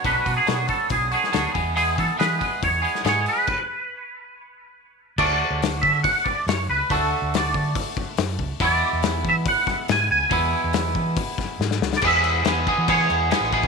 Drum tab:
CC |----------------|----------------|x---------------|x---------------|
HH |o-o-o-o-o-o-o-o-|o-o-o-o-o-o-o-o-|----------------|----o---o---o---|
SD |----o------oo---|----o------oo---|----------------|----o-------o---|
BD |o-o---o-o-----o-|--o---o-o-------|o---------------|o-----o-o-o-----|

CC |----------------|----------------|----------------|x-x-x-x-x-x-x-x-|
HH |o---o---o---o---|o---o---o---o---|o---o---o-------|----------------|
SD |----o-------o---|----o-----o-o---|----o-----o-oooo|----o-------oo--|
BD |o-----o-o-o---o-|o-----o-o-o-----|o-----o-o-o-----|o-----o-o-----oo|